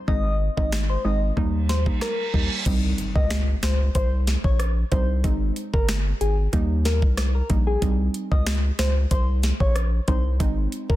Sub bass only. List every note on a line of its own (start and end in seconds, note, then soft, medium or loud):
0.08 0.49 G#1 loud
0.57 0.97 G#1 medium
1.05 1.32 G#1 medium
1.37 1.91 D#2 loud
2.34 2.48 D#2 medium
2.66 2.93 C2 loud
3.16 3.55 C#2 medium
3.63 3.90 C#2 loud
3.95 4.36 C2 loud
4.44 4.84 A#1 medium
4.92 5.26 C2 loud
5.24 5.51 G#1 loud
5.74 6.13 G1 medium
6.21 6.48 G#1 loud
6.53 7.04 D#2 loud
7.02 7.42 C2 medium
7.50 7.77 A#1 loud
7.82 8.09 C2 loud
8.32 8.71 C#2 medium
8.79 9.06 C#2 loud
9.11 9.52 C2 loud
9.60 10.00 A#1 medium
10.08 10.42 C2 loud
10.40 10.67 G#1 loud
10.90 10.96 G1 medium